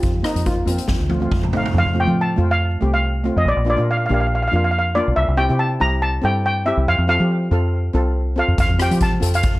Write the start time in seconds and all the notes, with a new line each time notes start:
Already playing: F4
0.03 F2, kick, closed hi-hat
0.22 A#3 C4 D#4 F4, cross-stick, closed hi-hat
0.35 F2, closed hi-hat
0.45 A#3 C4 D#4 F4, kick, closed hi-hat
0.65 F2 A#3 C4 F4, closed hi-hat
0.78 closed hi-hat
0.88 F2, kick, snare
1.00 D2
1.09 A3 C4 F4, high tom
1.20 A3 C4 F4
1.31 F2, kick, mid tom
1.43 mid tom
1.53 A3 C4 D#4, floor tom
1.57 F5
1.66 floor tom
1.74 F2
1.78 F5
1.86 F2
1.93 A3 C4 F4
2.00 G5
2.05 F3 A3 C4 F4
2.21 A5
2.36 F2 A3 C4 F4
2.51 F5
2.81 C2 A3 C4 G4
2.94 F5
3.24 A3 C4 F4
3.36 F2 D#5
3.45 A#1 D5
3.57 A#1
3.65 A#3 D4 F4
3.70 D5
3.77 A#2 A#3 D4 F4
3.91 F5
3.97 F5
4.06 A#3 D4 F5
4.10 A#1 G4 F5
4.20 F5
4.27 F5
4.35 F5
4.43 F5
4.48 A#3 F5
4.52 F2 D4 F4 F5
4.64 F5
4.71 F5
4.79 F5
4.95 A#3 D4 F4 D5
5.08 B1
5.16 C2 E5
5.28 C2
5.37 C4 E4 G4 G5
5.49 C3 C4 E4 G4
5.59 A5
5.80 C2 C4 E4 G4 A#5
6.02 A5
6.22 G2 C4 E4 A4 G5
6.46 G5
6.66 C4 E4 G4 E5
6.77 C2
6.87 F2 F5
6.98 F2
7.08 C4 F4 A4 F5
7.19 F3 C4 F4 G4
7.51 F2 C4 F4 A4
7.93 C2 C4 F4 A4
8.36 C4 F4 A4 F5
8.48 F2
8.58 F2 F5, kick, closed hi-hat
8.69 F2
8.78 C4 F4 G4 G5, cross-stick, closed hi-hat
8.91 F3 C4 F4 G4, closed hi-hat
9.01 A5, kick, closed hi-hat
9.20 F2 C4 F4 A4, closed hi-hat
9.34 F5, closed hi-hat
9.43 kick, closed hi-hat